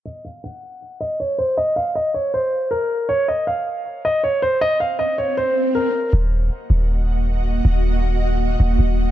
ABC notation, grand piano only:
X:1
M:4/4
L:1/8
Q:1/4=158
K:Ebdor
V:1 name="Grand piano"
e z g3 e d c | e f e d c2 B2 | d e f3 e d c | e f e d c2 B2 |
z8 | z8 |]